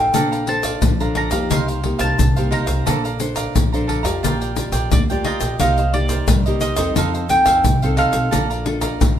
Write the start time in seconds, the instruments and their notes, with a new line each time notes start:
Already playing: upright bass A1, nylon-string guitar C3 A4 C5, cavaquinho A4 C5 F5, mandolin G5
0.14 upright bass A#1, nylon-string guitar A#3 D4 A4 C5, cavaquinho A4 D5 F5 A#5, pandeiro, shaker, surdo
0.32 cavaquinho D5 F5 A#5, pandeiro, shaker
0.47 nylon-string guitar D4 A4 C5, mandolin A5, muted cavaquinho stroke, pandeiro
0.63 cavaquinho D5 F5, pandeiro, shaker, surdo
0.82 upright bass A#1, nylon-string guitar F3, pandeiro, shaker, surdo
1.00 nylon-string guitar D4 A4 C5, cavaquinho D5 F5 A#5, pandeiro, shaker
1.15 cavaquinho A4 D5 F5 A#5, mandolin A#5, pandeiro, surdo
1.31 upright bass F2, nylon-string guitar A#3 D#4 G4, cavaquinho D5 F5 A#5, pandeiro, shaker, surdo
1.50 upright bass C2, nylon-string guitar C3, cavaquinho D#4 A#4 C5 F5, mandolin C6, pandeiro, shaker, surdo
1.68 cavaquinho A#4 C5 F5, pandeiro, shaker
1.84 nylon-string guitar A#3 D#4 G4, pandeiro, surdo
1.99 upright bass C2, cavaquinho A#4 C5 F5, mandolin A5, pandeiro, shaker, surdo
2.18 upright bass C2, nylon-string guitar C3, muted cavaquinho stroke, pandeiro, shaker, surdo
2.36 nylon-string guitar A#3 D#4 G4, cavaquinho A#4 C5 F5, pandeiro, shaker
2.51 cavaquinho D#4 A#4 C5 F5, mandolin A#5, pandeiro
2.66 upright bass C2, cavaquinho A#4 C5 F5, pandeiro, shaker
2.86 upright bass A#1, nylon-string guitar A#3 D4 A4 C5, cavaquinho A4 D5 F5 A#5, pandeiro, shaker, surdo
3.04 cavaquinho D5 F5 A#5, pandeiro, shaker
3.19 nylon-string guitar D4 A4 C5, muted cavaquinho stroke, pandeiro, shaker
3.36 cavaquinho D5 F5 A#5, pandeiro, shaker, surdo
3.55 upright bass A#1, nylon-string guitar F3, pandeiro, shaker, surdo
3.72 nylon-string guitar D4 A4 C5, cavaquinho D5 F5 A#5, pandeiro, shaker
3.87 cavaquinho A4 D5 F5 A#5, pandeiro, surdo
4.03 upright bass F2, nylon-string guitar F4 G4 D5, cavaquinho D5 F5 A#5, pandeiro, shaker, surdo
4.23 upright bass A#1, nylon-string guitar A#3, cavaquinho F4 A#4 D5 G5, pandeiro, shaker, surdo
4.41 cavaquinho A#4 D5 G5, pandeiro, shaker
4.56 nylon-string guitar F4 G4 D5, pandeiro, shaker, surdo
4.72 upright bass A#1, cavaquinho A#4 D5 G5, pandeiro, shaker, surdo
4.91 upright bass D2, nylon-string guitar A#3, mandolin D5, muted cavaquinho stroke, pandeiro, shaker, surdo
5.10 nylon-string guitar F4 G4 D5, cavaquinho A#4 D5 G5, pandeiro, shaker
5.24 cavaquinho F4 A#4 D5 G5, mandolin D#5, pandeiro
5.40 upright bass A#1, cavaquinho A#4 D5 G5, pandeiro, shaker
5.60 upright bass C2, nylon-string guitar C3 A#3 D#4 G4, cavaquinho D#4 A#4 C5 D#5, mandolin F5, pandeiro, shaker, surdo
5.78 cavaquinho A#4 C5 D#5, pandeiro, shaker
5.93 nylon-string guitar A#3 D#4 G4, mandolin D5, muted cavaquinho stroke, pandeiro
6.09 cavaquinho A#4 C5, pandeiro, shaker, surdo
6.28 upright bass C2, nylon-string guitar G3, pandeiro, shaker, surdo
6.46 nylon-string guitar A#3 D#4 G4, cavaquinho A#4 C5 D#5, pandeiro, shaker
6.61 cavaquinho D#4 A#4 C5 D#5, mandolin D#5, pandeiro, shaker
6.76 upright bass E2, nylon-string guitar C4 D#4 A4, cavaquinho A#4 C5 D#5, pandeiro, shaker, surdo
6.96 upright bass F2, nylon-string guitar F3, cavaquinho D#4 A4 C5 F5, pandeiro, shaker, surdo
7.14 cavaquinho A4 C5 F5, pandeiro, shaker
7.29 nylon-string guitar C4 D#4 A4, mandolin G5, pandeiro, shaker, surdo
7.45 upright bass F2, cavaquinho A4 C5 F5, pandeiro, shaker, surdo
7.64 upright bass C2, nylon-string guitar C3, muted cavaquinho stroke, pandeiro, shaker, surdo
7.82 nylon-string guitar C4 D#4 A4, cavaquinho A4 C5 F5, pandeiro, shaker
7.97 cavaquinho D#4 A4 C5 F5, mandolin F5, pandeiro
8.12 upright bass B1, cavaquinho A4 C5 F5, pandeiro, shaker
8.31 upright bass A#1, nylon-string guitar A#3 D4 F4 A4, cavaquinho A4 D5 F5 A#5, pandeiro, shaker, surdo
8.50 cavaquinho D5 F5 A#5, pandeiro, shaker
8.65 nylon-string guitar D4 F4 A4, muted cavaquinho stroke, pandeiro
8.81 cavaquinho D5 F5 A#5, pandeiro, shaker, surdo
9.01 upright bass A#1, nylon-string guitar F3, pandeiro, shaker, surdo